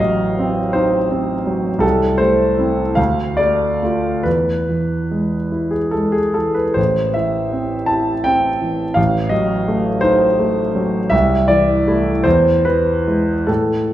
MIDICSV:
0, 0, Header, 1, 2, 480
1, 0, Start_track
1, 0, Key_signature, 0, "minor"
1, 0, Tempo, 739827
1, 1190, Time_signature, 12, 3, 24, 8
1, 1675, Tempo, 809717
1, 2155, Tempo, 846262
1, 4075, Tempo, 742574
1, 5035, Tempo, 710900
1, 6475, Tempo, 737101
1, 7435, Tempo, 783290
1, 7915, Tempo, 839161
1, 8648, End_track
2, 0, Start_track
2, 0, Title_t, "Grand piano"
2, 0, Program_c, 0, 0
2, 0, Control_c, 0, 64, 127
2, 0, Note_on_c, 0, 33, 60
2, 0, Note_on_c, 0, 54, 43
2, 0, Note_on_c, 0, 75, 72
2, 0, Note_on_c, 0, 77, 78
2, 251, Note_on_c, 0, 60, 45
2, 386, Note_off_c, 0, 54, 0
2, 474, Note_off_c, 0, 75, 0
2, 474, Note_on_c, 0, 72, 73
2, 487, Note_on_c, 0, 63, 48
2, 626, Note_off_c, 0, 60, 0
2, 717, Note_on_c, 0, 60, 44
2, 862, Note_off_c, 0, 63, 0
2, 952, Note_on_c, 0, 54, 44
2, 1096, Note_off_c, 0, 60, 0
2, 1158, Note_on_c, 0, 36, 57
2, 1165, Note_off_c, 0, 33, 0
2, 1170, Note_on_c, 0, 69, 76
2, 1187, Note_off_c, 0, 72, 0
2, 1189, Note_off_c, 0, 54, 0
2, 1200, Control_c, 0, 64, 0
2, 1204, Note_off_c, 0, 77, 0
2, 1300, Control_c, 0, 64, 127
2, 1413, Note_on_c, 0, 72, 73
2, 1419, Note_off_c, 0, 69, 0
2, 1425, Note_on_c, 0, 57, 44
2, 1678, Note_on_c, 0, 60, 40
2, 1678, Note_on_c, 0, 64, 43
2, 1812, Note_off_c, 0, 57, 0
2, 1874, Note_off_c, 0, 36, 0
2, 1887, Note_off_c, 0, 60, 0
2, 1887, Note_off_c, 0, 64, 0
2, 1895, Note_on_c, 0, 77, 71
2, 1901, Note_off_c, 0, 72, 0
2, 1905, Note_on_c, 0, 38, 54
2, 1922, Control_c, 0, 64, 0
2, 2027, Control_c, 0, 64, 127
2, 2141, Note_on_c, 0, 74, 70
2, 2148, Note_off_c, 0, 77, 0
2, 2155, Note_on_c, 0, 57, 38
2, 2393, Note_off_c, 0, 57, 0
2, 2402, Note_on_c, 0, 57, 32
2, 2403, Note_on_c, 0, 65, 36
2, 2622, Note_off_c, 0, 38, 0
2, 2624, Note_off_c, 0, 57, 0
2, 2624, Note_off_c, 0, 65, 0
2, 2632, Note_on_c, 0, 71, 65
2, 2639, Note_off_c, 0, 74, 0
2, 2642, Note_on_c, 0, 40, 47
2, 2656, Control_c, 0, 64, 0
2, 2769, Control_c, 0, 64, 127
2, 2893, Note_on_c, 0, 52, 39
2, 3130, Note_on_c, 0, 56, 34
2, 3269, Note_off_c, 0, 52, 0
2, 3361, Note_on_c, 0, 64, 36
2, 3469, Note_on_c, 0, 68, 49
2, 3472, Note_off_c, 0, 71, 0
2, 3505, Note_off_c, 0, 56, 0
2, 3585, Note_on_c, 0, 69, 61
2, 3593, Note_off_c, 0, 68, 0
2, 3602, Note_on_c, 0, 56, 33
2, 3703, Note_on_c, 0, 68, 55
2, 3712, Note_off_c, 0, 69, 0
2, 3744, Note_off_c, 0, 64, 0
2, 3827, Note_on_c, 0, 69, 56
2, 3833, Note_off_c, 0, 68, 0
2, 3841, Note_on_c, 0, 52, 36
2, 3943, Note_on_c, 0, 71, 52
2, 3954, Note_off_c, 0, 69, 0
2, 3986, Note_off_c, 0, 56, 0
2, 4052, Note_off_c, 0, 40, 0
2, 4055, Note_on_c, 0, 72, 66
2, 4066, Note_on_c, 0, 33, 48
2, 4067, Note_off_c, 0, 71, 0
2, 4076, Note_off_c, 0, 52, 0
2, 4089, Control_c, 0, 64, 0
2, 4184, Control_c, 0, 64, 127
2, 4308, Note_on_c, 0, 76, 62
2, 4315, Note_off_c, 0, 72, 0
2, 4321, Note_on_c, 0, 52, 38
2, 4558, Note_on_c, 0, 60, 39
2, 4702, Note_off_c, 0, 52, 0
2, 4778, Note_on_c, 0, 81, 72
2, 4790, Note_on_c, 0, 64, 41
2, 4791, Note_off_c, 0, 76, 0
2, 4938, Note_off_c, 0, 60, 0
2, 5021, Note_on_c, 0, 79, 76
2, 5025, Note_off_c, 0, 81, 0
2, 5034, Note_on_c, 0, 60, 43
2, 5178, Note_off_c, 0, 64, 0
2, 5273, Note_on_c, 0, 52, 40
2, 5420, Note_off_c, 0, 60, 0
2, 5484, Note_off_c, 0, 33, 0
2, 5494, Note_on_c, 0, 77, 73
2, 5508, Note_on_c, 0, 33, 57
2, 5509, Note_off_c, 0, 79, 0
2, 5514, Note_off_c, 0, 52, 0
2, 5529, Control_c, 0, 64, 0
2, 5635, Control_c, 0, 64, 127
2, 5732, Note_on_c, 0, 75, 70
2, 5744, Note_off_c, 0, 77, 0
2, 5745, Note_on_c, 0, 54, 43
2, 5991, Note_on_c, 0, 57, 50
2, 6131, Note_off_c, 0, 54, 0
2, 6215, Note_on_c, 0, 72, 75
2, 6221, Note_off_c, 0, 75, 0
2, 6228, Note_on_c, 0, 63, 49
2, 6378, Note_off_c, 0, 57, 0
2, 6476, Note_on_c, 0, 57, 48
2, 6615, Note_off_c, 0, 63, 0
2, 6708, Note_on_c, 0, 54, 49
2, 6856, Note_off_c, 0, 57, 0
2, 6923, Note_off_c, 0, 33, 0
2, 6932, Note_on_c, 0, 76, 78
2, 6942, Note_on_c, 0, 36, 61
2, 6944, Note_off_c, 0, 72, 0
2, 6951, Note_off_c, 0, 54, 0
2, 6964, Control_c, 0, 64, 0
2, 7085, Control_c, 0, 64, 127
2, 7181, Note_on_c, 0, 74, 80
2, 7185, Note_off_c, 0, 76, 0
2, 7191, Note_on_c, 0, 52, 47
2, 7438, Note_on_c, 0, 57, 46
2, 7439, Note_on_c, 0, 64, 54
2, 7573, Note_off_c, 0, 52, 0
2, 7644, Note_off_c, 0, 36, 0
2, 7648, Note_off_c, 0, 57, 0
2, 7648, Note_off_c, 0, 64, 0
2, 7660, Note_on_c, 0, 72, 77
2, 7663, Note_off_c, 0, 74, 0
2, 7670, Note_on_c, 0, 40, 63
2, 7680, Control_c, 0, 64, 0
2, 7797, Control_c, 0, 64, 127
2, 7911, Note_off_c, 0, 72, 0
2, 7913, Note_on_c, 0, 71, 70
2, 7923, Note_on_c, 0, 52, 43
2, 8155, Note_on_c, 0, 56, 34
2, 8157, Note_on_c, 0, 64, 37
2, 8298, Note_off_c, 0, 52, 0
2, 8371, Note_off_c, 0, 40, 0
2, 8371, Note_off_c, 0, 56, 0
2, 8372, Note_off_c, 0, 64, 0
2, 8381, Note_on_c, 0, 69, 61
2, 8391, Note_off_c, 0, 71, 0
2, 8391, Note_on_c, 0, 45, 51
2, 8402, Control_c, 0, 64, 0
2, 8518, Control_c, 0, 64, 127
2, 8648, Note_off_c, 0, 45, 0
2, 8648, Note_off_c, 0, 69, 0
2, 8648, End_track
0, 0, End_of_file